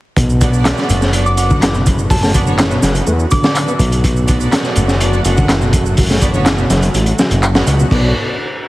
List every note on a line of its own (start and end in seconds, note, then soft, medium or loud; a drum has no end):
0.16 0.73 B1 loud
0.16 0.64 B2 medium
0.16 7.87 D3 medium
0.16 7.87 F#3 medium
0.16 4.00 B3 medium
0.16 7.87 F#4 medium
0.16 kick loud
0.16 closed hi-hat loud
0.16 shaker soft
0.29 shaker soft
0.41 0.52 B3 medium
0.41 0.52 D4 medium
0.41 0.52 F#4 medium
0.41 0.52 D5 loud
0.41 kick medium
0.41 closed hi-hat medium
0.41 shaker medium
0.53 1.11 B3 medium
0.53 1.11 D4 medium
0.53 1.11 F#4 medium
0.53 1.11 D5 loud
0.53 shaker soft
0.65 snare loud
0.65 clap loud
0.65 closed hi-hat medium
0.65 shaker soft
0.78 snare soft
0.78 shaker soft
0.89 2.79 F#1 loud
0.89 0.95 A2 medium
0.89 closed hi-hat medium
0.89 shaker medium
1.02 snare soft
1.02 shaker soft
1.13 1.34 B3 medium
1.13 1.34 D4 medium
1.13 1.34 F#4 medium
1.13 1.34 D5 loud
1.13 closed hi-hat medium
1.13 shaker soft
1.26 1.34 D6 medium
1.26 shaker soft
1.37 1.59 B3 medium
1.37 1.59 D4 medium
1.37 1.59 F#4 medium
1.37 1.59 F#5 medium
1.37 1.46 D6 medium
1.37 closed hi-hat medium
1.37 shaker medium
1.50 1.61 D3 medium
1.50 kick medium
1.50 shaker soft
1.62 1.73 E3 medium
1.62 snare loud
1.62 clap loud
1.62 closed hi-hat loud
1.62 shaker soft
1.74 1.86 B2 medium
1.74 shaker soft
1.86 kick loud
1.86 closed hi-hat medium
1.86 shaker medium
1.98 shaker soft
2.10 2.16 F#3 medium
2.10 2.18 A5 medium
2.10 kick loud
2.10 open hi-hat medium
2.10 shaker soft
2.23 2.32 A3 medium
2.23 2.30 A5 medium
2.23 snare soft
2.23 shaker soft
2.34 2.45 B3 loud
2.34 2.45 D4 medium
2.34 2.45 F#4 medium
2.34 2.45 D5 loud
2.34 kick loud
2.34 closed hi-hat medium
2.34 shaker medium
2.47 2.58 D3 medium
2.47 2.68 B3 medium
2.47 2.68 D4 medium
2.47 2.68 F#4 medium
2.47 2.68 C#5 loud
2.47 shaker soft
2.58 2.70 E3 medium
2.58 snare loud
2.58 clap loud
2.58 closed hi-hat medium
2.58 shaker soft
2.71 2.82 B2 medium
2.71 shaker soft
2.82 3.02 F#1 loud
2.82 snare medium
2.82 closed hi-hat medium
2.82 shaker medium
2.95 closed hi-hat soft
2.95 shaker soft
3.07 3.26 E2 medium
3.07 3.13 A3 medium
3.07 shaker soft
3.19 shaker soft
3.31 3.67 D3 medium
3.31 3.39 D6 medium
3.31 kick medium
3.31 closed hi-hat medium
3.31 shaker medium
3.44 3.65 B3 loud
3.44 3.65 D4 medium
3.44 3.65 F#4 medium
3.44 3.65 D5 loud
3.44 3.51 D6 medium
3.44 snare loud
3.44 shaker soft
3.55 clap loud
3.55 closed hi-hat medium
3.55 shaker soft
3.68 3.73 B3 medium
3.68 shaker soft
3.79 4.48 B1 medium
3.79 kick loud
3.79 closed hi-hat medium
3.79 shaker medium
3.92 closed hi-hat soft
3.92 shaker soft
4.04 4.51 B2 medium
4.04 7.87 A3 medium
4.04 kick loud
4.04 closed hi-hat medium
4.04 shaker soft
4.16 shaker soft
4.28 4.39 B3 medium
4.28 4.39 D4 medium
4.28 4.39 F#4 medium
4.28 4.39 D5 loud
4.28 kick loud
4.28 closed hi-hat medium
4.28 shaker medium
4.40 4.98 B3 medium
4.40 4.98 D4 medium
4.40 4.98 F#4 medium
4.40 4.98 D5 loud
4.40 shaker soft
4.52 snare loud
4.52 clap loud
4.52 closed hi-hat medium
4.52 shaker soft
4.64 snare soft
4.64 shaker soft
4.76 5.20 F#1 loud
4.76 4.82 A2 medium
4.76 closed hi-hat medium
4.76 shaker medium
4.88 snare soft
4.88 shaker soft
5.01 5.21 B3 medium
5.01 5.21 D4 medium
5.01 5.21 F#4 medium
5.01 5.21 D5 loud
5.01 closed hi-hat medium
5.01 shaker soft
5.13 shaker soft
5.25 6.66 F#1 loud
5.25 5.46 B3 medium
5.25 5.46 D4 medium
5.25 5.46 F#4 medium
5.25 5.46 F#5 medium
5.25 closed hi-hat medium
5.25 shaker medium
5.37 5.48 D3 medium
5.37 kick loud
5.37 shaker soft
5.49 5.60 E3 medium
5.49 snare loud
5.49 clap loud
5.49 closed hi-hat medium
5.49 shaker soft
5.61 5.73 B2 medium
5.61 shaker soft
5.73 kick medium
5.73 closed hi-hat medium
5.73 shaker medium
5.86 shaker soft
5.97 6.03 F#3 medium
5.97 kick loud
5.97 open hi-hat medium
5.97 shaker soft
6.10 6.19 A3 medium
6.10 snare medium
6.10 shaker soft
6.22 6.32 B3 loud
6.22 6.32 D4 medium
6.22 6.32 F#4 medium
6.22 6.32 D5 loud
6.22 kick loud
6.22 closed hi-hat medium
6.22 shaker medium
6.34 6.45 D3 medium
6.34 6.55 B3 loud
6.34 6.55 D4 medium
6.34 6.55 F#4 medium
6.34 6.55 C#5 loud
6.34 shaker soft
6.46 6.57 E3 medium
6.46 snare loud
6.46 clap loud
6.46 closed hi-hat medium
6.46 shaker soft
6.58 6.70 B2 medium
6.58 shaker soft
6.70 6.89 F#1 loud
6.70 snare medium
6.70 closed hi-hat medium
6.70 shaker medium
6.83 closed hi-hat soft
6.83 shaker soft
6.94 7.13 A1 medium
6.94 7.00 A3 medium
6.94 closed hi-hat medium
6.94 shaker soft
7.06 closed hi-hat soft
7.06 shaker soft
7.19 7.30 F#3 medium
7.19 snare loud
7.19 shaker medium
7.31 7.62 F#1 loud
7.31 7.36 B2 loud
7.31 closed hi-hat medium
7.31 shaker soft
7.43 clap loud
7.43 shaker soft
7.55 7.66 F#3 medium
7.55 7.68 B3 medium
7.55 7.68 D4 medium
7.55 7.68 F#4 medium
7.55 7.68 F#5 loud
7.55 snare loud
7.55 shaker soft
7.67 7.85 C#2 medium
7.67 closed hi-hat medium
7.67 shaker medium
7.79 7.88 B2 medium
7.79 shaker soft
7.91 8.14 B1 loud
7.91 8.14 B2 loud
7.91 8.14 D3 medium
7.91 8.14 F#3 medium
7.91 8.14 B3 medium
7.91 8.09 B3 medium
7.91 8.09 D4 medium
7.91 8.09 F#4 medium
7.91 8.14 F#4 medium
7.91 8.09 D5 medium
7.91 kick loud
7.91 crash medium